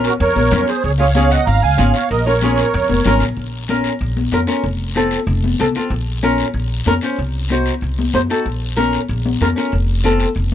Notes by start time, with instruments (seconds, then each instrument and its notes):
Already playing: nylon-string guitar C#4 F4 A#4
0.04 accordion F#4 A#4, short guiro
0.20 upright bass F2, accordion A#4 C#5, long guiro
0.36 upright bass A#1, high conga
0.51 upright bass F2, nylon-string guitar C#4 F4 A#4, high conga, low conga, short guiro
0.67 accordion G#4 C5, short guiro
0.83 upright bass C#2, accordion G#4 C#5, long guiro
0.98 nylon-string guitar C#4 F4 G#4, accordion C#5 F5
1.14 nylon-string guitar C#4 F4 G#4, accordion C#5 F5, high conga, short guiro
1.30 accordion D#5 F#5, short guiro
1.46 upright bass G#1, accordion F5 A#5, long guiro
1.62 upright bass C#2, accordion F5 G#5
1.78 upright bass G#1, nylon-string guitar C#4 F4 G#4, high conga, short guiro
1.93 accordion C#5 F5, short guiro
2.09 upright bass A#1, accordion A#4 D#5, long guiro
2.26 nylon-string guitar C#4 F4 A#4, accordion A#4 C#5
2.42 nylon-string guitar C#4 F4 G#4, high conga, short guiro
2.57 short guiro
2.74 upright bass F2, long guiro
2.89 upright bass F1, high conga
3.05 upright bass G#1, nylon-string guitar C#4 F4 A#4, high conga, low conga, short guiro
3.20 upright bass A#1, short guiro
3.37 upright bass A#1, long guiro
3.68 nylon-string guitar C#4 F4 A#4, high conga, short guiro
3.84 short guiro
3.99 upright bass A#1, long guiro
4.17 high conga
4.31 upright bass F2, nylon-string guitar C#4 F4 A#4, high conga, short guiro
4.47 nylon-string guitar C#4 F4 A#4, short guiro
4.64 upright bass F1, long guiro
4.95 nylon-string guitar C4 F4 A4, high conga, short guiro
5.11 short guiro
5.27 upright bass F1, long guiro
5.44 high conga
5.60 upright bass C2, nylon-string guitar C4 F4 A4, high conga, short guiro
5.75 nylon-string guitar C4 F4 A4, short guiro
5.90 upright bass A#1, long guiro
6.23 nylon-string guitar C#4 F4 A#4, high conga, short guiro
6.38 short guiro
6.54 upright bass A#1, long guiro
6.86 upright bass F2, nylon-string guitar C#4 F4 A#4, high conga, short guiro
7.01 nylon-string guitar C#4 F4 C5, short guiro
7.16 upright bass C2, long guiro
7.49 nylon-string guitar D#4 F#4 C5, high conga, short guiro
7.66 short guiro
7.81 upright bass C2, long guiro
7.99 high conga
8.13 upright bass F#2, nylon-string guitar D#4 F#4 C5, high conga, short guiro
8.30 nylon-string guitar D#4 F#4 A4, short guiro
8.46 upright bass A#1, long guiro
8.76 nylon-string guitar C#4 F4 A#4, high conga, short guiro
8.93 short guiro
9.09 upright bass A#1, long guiro
9.26 high conga
9.41 upright bass F2, nylon-string guitar C#4 F4 A#4, high conga, short guiro
9.56 nylon-string guitar C#4 F4 A#4, short guiro
9.72 upright bass F1, long guiro
10.04 nylon-string guitar C4 F4 A4, high conga, short guiro
10.20 short guiro
10.35 upright bass F1, long guiro